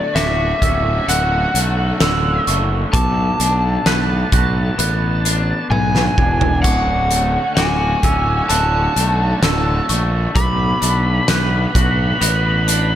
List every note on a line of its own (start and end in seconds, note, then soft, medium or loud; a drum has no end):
0.00 1.54 D2 medium
0.00 12.95 D3 medium
0.00 1.54 A3 medium
0.00 6.61 A3 medium
0.00 1.05 B3 medium
0.00 0.16 F#4 medium
0.00 2.90 F#4 medium
0.00 0.19 D5 medium
0.00 0.16 C#6 medium
0.15 0.52 D1 medium
0.15 3.66 F#4 medium
0.15 1.09 E5 medium
0.15 0.62 D6 medium
0.15 snare medium
0.15 closed hi-hat medium
0.62 0.98 D1 medium
0.62 2.97 C#4 medium
0.62 1.09 E6 medium
0.62 kick medium
0.62 closed hi-hat medium
1.08 1.45 D1 medium
1.08 2.00 D3 medium
1.08 2.93 C#4 medium
1.08 2.44 F#5 medium
1.08 2.02 F#6 medium
1.08 closed hi-hat medium
1.54 1.91 B1 medium
1.54 2.48 A3 medium
1.54 closed hi-hat medium
2.00 2.38 D1 medium
2.00 2.94 D3 medium
2.00 2.48 E6 medium
2.00 snare loud
2.00 closed hi-hat medium
2.47 2.84 F#1 medium
2.47 2.97 A3 medium
2.47 2.94 C#6 medium
2.47 closed hi-hat medium
2.93 3.30 B1 medium
2.93 5.26 B2 medium
2.93 6.62 B3 medium
2.93 5.70 A5 medium
2.93 3.87 D6 medium
2.93 kick loud
2.93 closed hi-hat medium
3.40 3.76 B1 medium
3.40 5.25 D4 medium
3.40 closed hi-hat medium
3.86 4.23 B1 medium
3.86 6.19 B4 medium
3.86 4.32 F#6 medium
3.86 snare medium
3.86 closed hi-hat medium
4.32 4.69 B1 medium
4.32 7.58 F#4 medium
4.32 4.79 F#6 medium
4.32 kick medium
4.32 closed hi-hat medium
4.78 5.52 A1 medium
4.78 5.71 B3 medium
4.78 5.72 F#6 medium
4.78 closed hi-hat medium
5.25 6.18 D4 medium
5.25 closed hi-hat medium
5.70 6.07 B1 medium
5.70 6.65 B3 medium
5.70 6.62 G#5 medium
5.70 6.17 G#6 medium
5.70 high tom medium
5.95 snare medium
6.18 6.64 E1 medium
6.18 7.11 D4 medium
6.18 6.65 G#6 medium
6.18 kick medium
6.41 floor tom medium
6.62 7.37 D1 medium
6.62 8.97 D2 medium
6.62 12.17 A3 medium
6.62 8.48 C#4 medium
6.62 10.32 F#4 medium
6.62 7.55 F#5 medium
6.62 7.58 C#6 medium
6.62 kick medium
6.62 closed hi-hat medium
6.62 splash medium
7.11 8.96 A3 medium
7.11 closed hi-hat medium
7.55 7.94 D1 medium
7.55 11.08 F#4 medium
7.55 8.49 G#5 medium
7.55 8.04 D6 medium
7.55 snare medium
7.55 closed hi-hat medium
8.03 8.40 D1 medium
8.03 10.38 C#4 medium
8.03 8.51 E6 medium
8.03 kick medium
8.03 closed hi-hat medium
8.49 8.87 D1 medium
8.49 9.41 D3 medium
8.49 10.34 C#4 medium
8.49 9.85 A5 medium
8.49 9.43 F#6 medium
8.49 closed hi-hat medium
8.96 9.33 B1 medium
8.96 9.88 A3 medium
8.96 closed hi-hat soft
9.42 9.79 D1 medium
9.42 10.36 D3 medium
9.42 9.90 E6 medium
9.42 snare loud
9.42 closed hi-hat medium
9.89 10.26 A#1 medium
9.89 10.38 A3 medium
9.89 10.36 C#6 medium
9.89 closed hi-hat medium
10.35 10.72 B1 medium
10.35 12.68 B2 medium
10.35 12.95 B3 medium
10.35 12.95 B5 loud
10.35 11.29 D6 medium
10.35 kick loud
10.35 closed hi-hat medium
10.81 11.19 B1 medium
10.81 12.67 D4 medium
10.81 closed hi-hat medium
11.28 11.65 B1 medium
11.28 12.95 B4 medium
11.28 11.74 F#6 medium
11.28 snare medium
11.28 closed hi-hat medium
11.75 12.11 B1 medium
11.75 12.95 F#4 medium
11.75 12.21 F#6 medium
11.75 kick medium
11.75 closed hi-hat medium
12.21 12.94 A1 medium
12.21 12.95 G#3 medium
12.21 12.95 B3 medium
12.21 12.95 F#6 medium
12.21 closed hi-hat medium
12.68 12.95 D4 medium
12.68 closed hi-hat medium